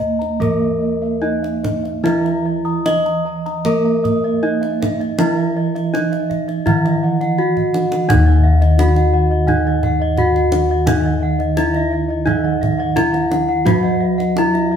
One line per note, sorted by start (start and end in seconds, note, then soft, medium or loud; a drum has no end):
0.00 0.39 D#2 medium
0.00 0.39 A#3 medium
0.00 1.19 A#4 medium
0.00 0.22 D#5 medium
0.00 0.41 D#5 medium
0.00 kendang low soft
0.19 0.42 A#5 medium
0.19 kendang slap soft
0.40 2.82 E3 medium
0.40 2.05 A#3 medium
0.40 1.23 A#4 medium
0.40 0.63 D#5 medium
0.40 kendang low medium
0.61 0.84 E5 soft
0.81 1.04 D#5 medium
1.02 1.25 E5 medium
1.22 2.04 D#4 medium
1.22 1.30 E4 soft
1.22 1.45 D#5 medium
1.43 1.66 E5 medium
1.43 kendang slap soft
1.63 1.86 D#5 medium
1.63 kendang high soft
1.63 kendang low medium
1.84 2.07 E5 soft
1.84 kendang slap soft
2.04 3.65 E3 medium
2.04 2.86 E4 medium
2.04 2.85 E4 medium
2.04 2.27 D#5 medium
2.04 2.23 E5 medium
2.04 kendang high medium
2.25 2.44 E5 medium
2.25 2.48 A#5 medium
2.25 kendang slap soft
2.45 2.68 D#5 medium
2.45 2.64 D#5 medium
2.65 2.88 A#5 medium
2.65 2.84 D#6 medium
2.85 2.94 E4 soft
2.85 3.08 D#5 soft
2.85 3.65 D#5 medium
2.85 3.04 D#6 medium
2.85 kendang high medium
3.06 3.28 A#5 medium
3.06 3.25 D#6 medium
3.06 kendang slap soft
3.25 3.48 D#5 medium
3.25 3.45 A#5 medium
3.46 3.68 A#5 medium
3.46 3.64 D#6 soft
3.46 kendang slap soft
3.65 5.90 E3 medium
3.65 5.20 A#3 medium
3.65 4.43 A#4 medium
3.65 3.87 D#5 medium
3.65 3.84 A#5 medium
3.65 kendang low medium
3.85 4.07 E5 medium
3.85 4.03 A#5 medium
4.04 4.26 D#5 medium
4.04 4.22 D#6 medium
4.04 kendang low medium
4.24 4.42 D#5 medium
4.24 4.45 E5 medium
4.42 5.19 D#4 medium
4.42 4.51 E4 soft
4.42 4.64 D#5 medium
4.42 4.61 D#5 medium
4.61 4.80 D#5 medium
4.61 4.83 E5 medium
4.61 kendang slap soft
4.80 5.02 D#5 medium
4.80 4.99 E5 medium
4.80 kendang high medium
4.80 kendang low medium
5.00 5.18 D#5 medium
5.00 5.21 E5 medium
5.00 kendang slap soft
5.18 6.65 E3 medium
5.18 5.94 E4 medium
5.18 5.93 E4 medium
5.18 5.40 D#5 medium
5.18 5.36 E5 medium
5.18 kendang high medium
5.38 5.55 E5 medium
5.38 5.59 E5 medium
5.56 5.77 D#5 medium
5.56 5.74 D#5 medium
5.75 5.93 D#5 medium
5.75 5.96 E5 medium
5.75 kendang slap soft
5.93 6.67 D#4 medium
5.93 6.02 E4 soft
5.93 6.14 D#5 soft
5.93 6.11 D#5 medium
5.93 kendang high medium
6.12 6.29 D#5 medium
6.12 6.33 E5 medium
6.12 kendang slap soft
6.30 6.51 D#5 medium
6.30 6.47 E5 medium
6.30 kendang low soft
6.48 6.65 D#5 medium
6.48 6.69 E5 soft
6.48 kendang slap soft
6.66 8.74 D#3 medium
6.66 8.09 E3 medium
6.66 7.38 E4 medium
6.66 6.84 E5 medium
6.66 6.87 F#5 medium
6.66 kendang low medium
6.85 7.05 D#5 medium
6.85 7.02 E5 medium
6.85 kendang slap soft
7.03 7.20 D#5 medium
7.03 7.23 F#5 medium
7.21 7.41 D#5 medium
7.21 7.37 F#5 medium
7.21 kendang slap soft
7.38 7.47 E4 soft
7.38 8.09 F#4 medium
7.38 7.55 F#5 medium
7.38 7.59 F#5 medium
7.57 7.76 D#5 medium
7.57 7.73 F#5 medium
7.57 kendang low soft
7.74 7.91 D#5 soft
7.74 7.94 F#5 medium
7.74 kendang high medium
7.91 8.11 D#5 medium
7.91 8.08 F#5 medium
7.91 kendang high medium
8.09 9.46 D#3 medium
8.09 10.14 D#4 medium
8.09 8.79 D#4 medium
8.09 8.25 D#5 medium
8.09 8.28 F#5 medium
8.09 kendang high medium
8.09 kendang low medium
8.14 12.25 D#2 loud
8.26 8.43 D#5 medium
8.26 8.46 D#5 medium
8.44 8.60 E5 medium
8.44 8.63 F#5 medium
8.61 8.81 D#5 medium
8.61 8.78 D#5 medium
8.61 kendang slap soft
8.78 8.86 E4 soft
8.78 9.49 F#4 medium
8.78 8.98 F#5 soft
8.78 8.95 F#5 medium
8.78 kendang high medium
8.96 9.16 D#5 medium
8.96 9.13 F#5 medium
8.96 kendang slap soft
9.14 9.30 D#5 medium
9.14 9.33 F#5 medium
9.30 9.50 D#5 medium
9.30 9.47 D#5 medium
9.47 10.85 D#3 medium
9.47 10.18 D#4 medium
9.47 9.65 D#5 medium
9.47 9.68 F#5 medium
9.47 kendang low medium
9.65 9.85 D#5 medium
9.65 9.83 D#5 medium
9.83 10.03 F#5 medium
9.83 10.00 F#5 medium
9.83 kendang low medium
10.00 10.20 D#5 medium
10.00 10.17 D#5 medium
10.17 10.26 E4 soft
10.17 10.88 F#4 medium
10.17 10.37 F#5 medium
10.17 10.35 F#5 medium
10.17 kendang low medium
10.35 10.55 D#5 medium
10.35 10.52 F#5 medium
10.35 kendang slap soft
10.52 10.69 D#5 medium
10.52 10.72 F#5 medium
10.52 kendang high medium
10.69 10.89 D#5 medium
10.69 10.87 D#5 medium
10.86 12.25 D#3 medium
10.86 11.57 D#4 medium
10.86 12.93 D#4 medium
10.86 11.04 D#5 medium
10.86 11.07 E5 medium
10.86 kendang high medium
10.86 kendang low medium
11.04 11.24 D#5 medium
11.04 11.22 D#5 medium
11.21 11.41 E5 medium
11.21 11.39 F#5 medium
11.39 11.59 D#5 medium
11.39 11.57 D#5 medium
11.39 kendang slap soft
11.56 12.27 E4 medium
11.56 11.66 E4 medium
11.56 11.76 E5 medium
11.56 11.74 E5 medium
11.56 kendang high medium
11.74 11.94 D#5 medium
11.74 11.92 E5 medium
11.74 kendang slap soft
11.90 12.09 D#5 medium
11.90 12.11 E5 medium
12.08 12.28 D#5 medium
12.08 12.26 D#5 medium
12.26 13.66 D#3 medium
12.26 14.33 F#3 medium
12.26 12.96 D#4 medium
12.26 12.43 D#5 medium
12.26 12.46 E5 medium
12.26 kendang low medium
12.44 12.61 D#5 medium
12.44 12.64 F#5 medium
12.61 12.81 E5 medium
12.61 12.78 E5 medium
12.61 kendang low medium
12.78 12.96 D#5 medium
12.78 12.98 F#5 medium
12.96 13.66 E4 loud
12.96 13.04 E4 medium
12.96 13.16 E5 medium
12.96 13.12 E5 medium
12.96 kendang high medium
12.96 kendang low medium
13.13 13.30 E5 medium
13.13 13.33 F#5 medium
13.13 kendang slap soft
13.31 13.51 E5 medium
13.31 13.47 F#5 medium
13.31 kendang high medium
13.49 13.68 F#5 medium
13.49 13.64 F#5 medium
13.65 14.77 F#3 medium
13.65 14.77 F#4 medium
13.65 14.37 F#4 medium
13.65 13.86 E5 medium
13.65 13.82 F#5 medium
13.65 kendang high medium
13.65 kendang low medium
13.83 14.03 D#5 medium
13.83 14.00 F#5 medium
14.00 14.17 E5 medium
14.00 14.21 E5 medium
14.18 14.38 D#5 medium
14.18 14.35 F#5 medium
14.18 kendang slap soft
14.36 14.44 E4 soft
14.36 14.77 E4 loud
14.36 14.53 E5 medium
14.36 kendang high medium
14.54 14.74 D#5 medium
14.54 14.71 E5 medium
14.54 kendang slap soft
14.71 14.77 D#5 medium
14.71 14.77 E5 medium